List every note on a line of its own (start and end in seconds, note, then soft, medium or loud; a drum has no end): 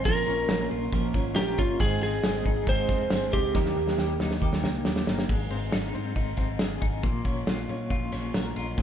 0.00 0.10 C4 medium
0.00 0.10 D#4 medium
0.05 0.23 A#1 loud
0.05 0.27 A#2 medium
0.05 1.80 A#2 medium
0.05 0.28 F3 medium
0.05 0.28 A#3 medium
0.05 0.26 C#4 medium
0.05 0.25 F4 loud
0.05 0.67 A#4 medium
0.05 0.48 A#4 medium
0.05 kick loud
0.05 ride medium
0.26 0.45 A#1 loud
0.26 0.49 A#3 soft
0.26 1.14 C#4 medium
0.26 0.49 C#4 soft
0.26 0.49 F4 medium
0.26 ride medium
0.48 0.67 A#1 loud
0.48 0.71 F3 medium
0.48 0.71 A#3 medium
0.48 0.71 C#4 medium
0.48 0.69 F4 medium
0.48 0.92 A#4 medium
0.48 snare loud
0.48 ride medium
0.70 0.89 A#1 medium
0.70 0.93 A#3 soft
0.70 0.93 C#4 soft
0.70 0.93 F4 medium
0.70 1.84 F4 medium
0.70 ride soft
0.92 1.10 A#1 loud
0.92 1.15 A#2 medium
0.92 1.15 F3 medium
0.92 1.15 A#3 medium
0.92 1.15 C#4 loud
0.92 1.13 F4 medium
0.92 1.35 A#4 medium
0.92 kick loud
0.92 ride medium
1.14 1.32 G#1 medium
1.14 1.35 A#3 soft
1.14 1.58 C#4 medium
1.14 1.37 C#4 medium
1.14 1.36 F4 medium
1.14 kick medium
1.14 ride medium
1.36 1.54 A#1 loud
1.36 1.58 F3 medium
1.36 1.58 A#3 medium
1.36 1.58 C#4 medium
1.36 1.57 F4 medium
1.36 1.59 G4 medium
1.36 1.80 A#4 medium
1.36 snare loud
1.36 ride medium
1.58 1.76 G1 loud
1.58 1.80 A#3 soft
1.58 1.85 C#4 medium
1.58 1.81 C#4 soft
1.58 1.80 F4 medium
1.58 1.81 F4 medium
1.58 kick loud
1.58 ride medium
1.79 1.98 G#1 loud
1.79 2.02 G#2 medium
1.79 3.55 G#2 medium
1.79 2.02 D#3 loud
1.79 2.02 G#3 loud
1.79 2.01 C4 medium
1.79 2.00 D#4 loud
1.79 2.02 G#4 loud
1.79 2.23 G#4 medium
1.79 kick loud
1.79 ride medium
2.01 2.20 G#1 medium
2.01 2.23 G#3 soft
2.01 2.89 C4 medium
2.01 2.24 C4 medium
2.01 2.23 D#4 medium
2.01 2.69 G#4 loud
2.01 ride medium
2.23 2.41 G#1 loud
2.23 2.45 D#3 medium
2.23 2.46 G#3 medium
2.23 2.45 C4 medium
2.23 2.44 D#4 medium
2.23 2.67 G#4 medium
2.23 snare loud
2.23 ride medium
2.45 2.63 G#1 loud
2.45 2.67 G#3 soft
2.45 2.68 C4 soft
2.45 2.67 D#4 medium
2.45 4.20 D#4 medium
2.45 kick loud
2.45 ride medium
2.67 2.85 G#1 loud
2.67 2.89 G#2 medium
2.67 2.89 D#3 medium
2.67 2.90 G#3 medium
2.67 2.89 C4 medium
2.67 2.87 D#4 medium
2.67 3.10 G#4 medium
2.67 3.35 C5 loud
2.67 kick loud
2.67 ride medium
2.88 3.07 F1 medium
2.88 3.10 G#3 soft
2.88 3.11 C4 soft
2.88 3.32 C4 medium
2.88 3.11 D#4 soft
2.88 kick medium
2.88 snare soft
2.88 ride medium
3.10 3.29 G1 loud
3.10 3.32 D#3 medium
3.10 3.33 G#3 medium
3.10 3.33 C4 medium
3.10 3.31 D#4 medium
3.10 3.55 G#4 medium
3.10 snare loud
3.10 ride medium
3.32 3.51 C#2 medium
3.32 3.54 G#3 soft
3.32 3.59 C4 medium
3.32 3.55 C4 medium
3.32 3.54 D#4 medium
3.32 4.16 G4 medium
3.32 kick loud
3.32 ride medium
3.54 3.73 D#2 loud
3.54 3.76 D#3 medium
3.54 5.29 D#3 medium
3.54 3.76 G3 medium
3.54 3.75 A#3 medium
3.54 3.74 D#4 loud
3.54 3.98 G4 medium
3.54 kick loud
3.54 snare medium
3.65 snare medium
3.75 3.94 D#2 loud
3.75 3.97 G3 soft
3.75 3.98 A#3 medium
3.75 4.63 A#3 medium
3.75 3.97 D#4 medium
3.88 snare medium
3.97 4.16 D#2 loud
3.97 4.19 D#3 medium
3.97 4.20 G3 medium
3.97 4.20 A#3 medium
3.97 4.18 D#4 medium
3.97 4.41 G4 medium
3.97 snare medium
4.19 4.38 D#2 medium
4.19 4.40 G3 soft
4.19 4.41 A#3 soft
4.19 4.41 D#4 medium
4.19 5.34 D#4 medium
4.19 snare medium
4.31 snare medium
4.41 4.65 D#2 loud
4.41 4.63 D#3 medium
4.41 4.63 G3 medium
4.41 4.63 A#3 medium
4.41 4.62 D#4 medium
4.41 4.85 G4 medium
4.41 kick loud
4.53 snare medium
4.63 4.81 C#2 medium
4.63 4.85 G3 soft
4.63 5.06 A#3 medium
4.63 4.86 A#3 medium
4.63 4.85 D#4 medium
4.63 snare medium
4.85 5.03 D#2 medium
4.85 5.07 D#3 medium
4.85 5.07 G3 medium
4.85 5.07 A#3 medium
4.85 5.05 D#4 medium
4.85 5.33 G4 medium
4.85 snare loud
4.96 snare medium
5.06 5.25 G1 loud
5.06 5.30 G3 soft
5.06 5.33 A#3 medium
5.06 5.29 A#3 soft
5.06 5.28 D#4 medium
5.06 snare loud
5.19 snare medium
5.29 5.47 G#1 loud
5.29 7.04 G#2 medium
5.29 kick loud
5.29 crash loud
5.50 5.68 G#1 loud
5.50 5.94 C4 medium
5.50 ride medium
5.72 5.91 G#1 loud
5.72 6.15 D#4 medium
5.72 snare loud
5.72 ride medium
5.94 6.12 G#2 medium
5.94 6.37 C4 medium
5.94 ride medium
6.16 6.34 G#1 loud
6.16 6.80 D#4 medium
6.16 kick loud
6.16 ride medium
6.37 6.56 G#1 medium
6.37 7.08 C4 medium
6.37 kick medium
6.37 snare soft
6.37 ride medium
6.59 6.78 G#1 loud
6.59 7.08 G#4 medium
6.59 snare loud
6.59 ride medium
6.81 7.00 G#1 loud
6.81 7.08 D#4 medium
6.81 kick loud
6.81 ride medium
7.03 7.21 A#1 loud
7.03 8.78 A#2 loud
7.03 kick loud
7.03 ride medium
7.25 7.43 A#1 loud
7.25 7.68 C#4 medium
7.25 kick medium
7.25 ride medium
7.47 7.65 A#1 loud
7.47 7.90 F4 medium
7.47 snare loud
7.47 ride medium
7.69 7.87 A#2 loud
7.69 8.11 C#4 medium
7.69 ride soft
7.90 8.08 A#1 loud
7.90 8.55 F4 medium
7.90 kick medium
7.90 ride medium
8.12 8.30 A#1 loud
8.12 8.82 C#4 medium
8.12 snare soft
8.12 ride medium
8.34 8.52 A#1 loud
8.34 8.82 A#4 medium
8.34 snare loud
8.34 ride medium
8.56 8.74 A#1 loud
8.56 8.82 F4 medium
8.56 ride medium
8.78 8.82 G#1 loud
8.78 8.82 G#2 loud
8.78 8.82 G#2 medium
8.78 8.82 D#3 loud
8.78 8.82 G#3 medium
8.78 8.82 C4 loud
8.78 kick loud
8.78 ride medium